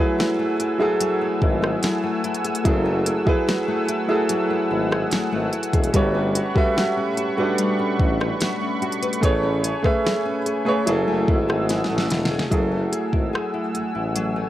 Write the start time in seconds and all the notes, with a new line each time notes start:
Already playing: F#3 A3 E4 A4 F#5 G#5 E6
0.00 G#4 B4
0.18 E4, snare
0.39 A3
0.60 E4, closed hi-hat
0.78 F#3 E4 G#4 A4
1.01 F#3, closed hi-hat
1.21 A3
1.42 G#1 E4, kick
1.62 G#4, cross-stick
1.83 E4, snare, closed hi-hat
2.03 A3
2.24 E4, closed hi-hat
2.34 closed hi-hat
2.44 G#4, closed hi-hat
2.55 closed hi-hat
2.64 F#1 F#3 E4 G#4 A4, kick, closed hi-hat
2.85 A3
3.06 E4, closed hi-hat
3.25 F#3 E4 G#4 B4, kick
3.47 E4, snare
3.68 A3
3.88 E4, closed hi-hat
4.08 F#3 E4 G#4 A4
4.29 F#3, closed hi-hat
4.50 A3
4.71 G#1 E4
4.91 G#4, cross-stick
5.11 G#1 E4, snare, closed hi-hat
5.32 G#1 A3
5.53 E4, closed hi-hat
5.63 closed hi-hat
5.73 E1 G#4, kick, closed hi-hat
5.84 closed hi-hat
5.92 G1 G3 A3 F#4 A4 B4 C#5 B5 C#6, kick, closed hi-hat
6.15 C#4
6.35 F#4, closed hi-hat
6.54 G3 F#4 A4 B4 E5, kick
6.76 F#4, snare
6.97 C#4
7.17 F#4, closed hi-hat
7.36 G3 D4 F#4 A4 B4
7.58 G3, closed hi-hat
7.79 C#4
8.00 A1 F#4, kick
8.20 B4, cross-stick
8.41 F#4, snare, closed hi-hat
8.61 C#4
8.82 F#4, closed hi-hat
8.92 closed hi-hat
9.02 B4, closed hi-hat
9.13 closed hi-hat
9.21 A1 A3 G#4 B4 C#5 G#5, kick, closed hi-hat
9.43 C#4
9.64 G#4, closed hi-hat
9.82 A3 G#4 B4 E5, kick, cross-stick
10.05 G#4, snare
10.25 C#4
10.46 G#4, closed hi-hat
10.65 A3 G#4 B4 C#5
10.85 F#1 F#3 A3 E4 G#4 A4 F#5 E6, closed hi-hat
11.08 F#1 A3
11.28 G#1 E4, kick
11.49 G#1 G#4, cross-stick
11.69 E4, snare, closed hi-hat
11.84 snare
11.89 A1 A3
11.98 snare
12.10 E1 E4, snare, closed hi-hat
12.25 snare
12.30 G#4
12.39 snare
12.50 F#1 F#3 A3 E4 G#4 A4 F#5 G#5 E6, kick, closed hi-hat
12.71 A3
12.92 G#4, closed hi-hat
13.13 G#1 E4, kick
13.33 G#4, cross-stick
13.54 E4
13.74 A1 G#4, closed hi-hat
13.95 A1 E4
14.16 F#3, closed hi-hat
14.36 A3